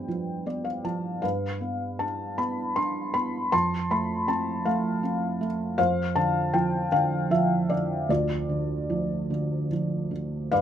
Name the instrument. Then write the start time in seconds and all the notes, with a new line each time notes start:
felt piano
Already playing: G2 F3 B3 B4 G5
0.08 F3
0.46 B3 D5
0.65 F5
0.84 F3 A5
1.22 G2 B4 F5
1.61 B3
1.99 D4 A5
2.38 B3 B5
2.76 D4 C6
3.14 B3 B5
3.52 F2 A5 C6
3.90 A3 B5
4.28 C4 A5
4.65 A3 F5
5.03 C4
5.41 A3
5.78 F2 C5 F5
6.16 D3 A5
6.54 F3 G5
6.92 D3 F5
7.31 F3 E5
7.70 D3 D5
8.09 D2 F4 D5
8.49 D3
8.90 F3
9.30 D3
9.72 F3
10.11 D3
10.52 G2 B4 D5 F5